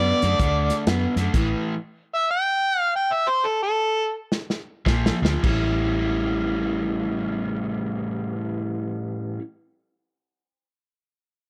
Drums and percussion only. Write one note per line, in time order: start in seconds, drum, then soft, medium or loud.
0.22 snare soft
0.22 closed hi-hat medium
0.40 kick loud
0.40 closed hi-hat medium
0.70 snare soft
0.70 closed hi-hat medium
0.87 snare loud
0.87 closed hi-hat medium
1.17 snare soft
1.17 closed hi-hat medium
1.34 kick loud
1.34 closed hi-hat medium
1.34 crash medium
4.32 snare medium
4.50 snare medium
4.86 kick loud
4.86 snare medium
5.06 snare loud
5.25 snare loud
5.44 kick loud
5.44 crash medium